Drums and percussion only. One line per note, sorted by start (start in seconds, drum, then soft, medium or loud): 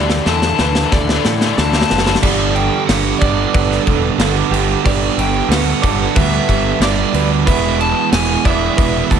0.10 snare loud
0.26 snare loud
0.42 snare medium
0.59 snare loud
0.75 snare loud
0.92 kick loud
0.92 snare loud
1.09 snare loud
1.25 snare loud
1.41 snare loud
1.58 snare loud
1.73 snare loud
1.81 snare loud
1.90 snare loud
1.98 snare loud
2.06 snare loud
2.15 snare loud
2.23 kick loud
2.23 crash loud
2.23 crash medium
2.56 crash medium
2.89 snare loud
2.89 crash medium
3.22 kick medium
3.22 crash medium
3.54 kick loud
3.54 crash medium
3.72 snare soft
3.87 kick medium
3.87 crash medium
4.20 snare loud
4.20 crash medium
4.53 crash medium
4.86 kick loud
4.86 crash medium
5.19 crash medium
5.52 snare loud
5.52 crash loud
5.83 kick medium
5.83 crash medium
6.16 kick loud
6.16 crash medium
6.49 kick medium
6.49 crash medium
6.82 snare loud
6.82 crash medium
7.14 crash medium
7.47 kick loud
7.47 crash medium
7.81 crash medium
8.13 snare loud
8.13 crash medium
8.45 kick medium
8.45 crash medium
8.78 kick loud
8.78 crash medium
9.11 kick medium
9.11 crash medium